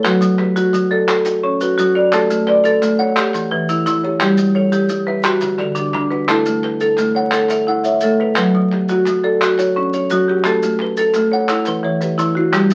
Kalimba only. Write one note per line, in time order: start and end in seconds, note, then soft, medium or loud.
0.00 0.39 B4 medium
0.00 0.39 C#5 medium
0.21 0.56 F#3 medium
0.38 0.91 G4 medium
0.56 1.07 F#4 medium
0.73 1.08 F#3 medium
0.91 1.43 D5 medium
1.08 1.25 F#4 medium
1.26 1.61 F#4 medium
1.44 1.95 C#5 medium
1.62 2.13 B4 medium
1.79 2.13 F#3 medium
1.95 2.47 A4 medium
2.14 2.48 G4 medium
2.30 2.65 A3 medium
2.47 2.99 B4 medium
2.64 3.15 A4 medium
2.82 3.17 A3 medium
2.99 3.51 F#5 medium
3.16 3.51 A4 medium
3.34 3.69 E3 medium
3.51 4.03 B4 medium
3.69 4.21 A4 medium
3.87 4.21 E3 medium
4.04 4.56 G4 medium
4.22 4.56 F#4 medium
4.39 4.73 G3 medium
4.56 5.07 A4 medium
4.73 5.23 G4 medium
4.90 5.25 G3 medium
5.08 5.60 E5 medium
5.24 5.59 G4 medium
5.42 5.77 D3 medium
5.60 6.12 A4 medium
5.78 6.29 G4 medium
5.95 6.29 D3 medium
6.12 6.63 F#4 medium
6.30 6.64 E4 medium
6.46 6.81 A3 medium
6.64 7.15 B4 medium
6.81 7.32 A4 medium
6.98 7.33 A3 medium
7.16 7.67 F#5 medium
7.33 7.49 A4 medium
7.50 7.85 A4 medium
7.50 8.02 E5 medium
7.68 8.20 F#5 medium
7.85 8.37 C#5 medium
8.04 8.38 A3 medium
8.21 8.72 A4 medium
8.37 8.72 B4 medium
8.55 8.89 F#3 medium
8.73 9.24 G4 medium
8.91 9.40 F#4 medium
9.08 9.42 F#3 medium
9.24 9.76 D5 medium
9.41 9.58 F#4 medium
9.59 9.93 F#4 medium
9.59 10.11 C#5 medium
9.77 10.28 D4 medium
9.95 10.46 A4 medium
10.12 10.46 F#3 medium
10.29 10.81 F#4 medium
10.46 10.80 G4 medium
10.63 10.98 A3 medium
10.82 11.33 B4 medium
10.99 11.49 A4 medium
11.16 11.50 A3 medium
11.33 11.85 F#5 medium
11.50 11.84 A4 medium
11.67 12.02 E3 medium
11.67 12.19 B4 medium
11.84 12.36 C#5 medium
12.02 12.54 G4 medium
12.19 12.54 E3 medium
12.37 12.74 E4 medium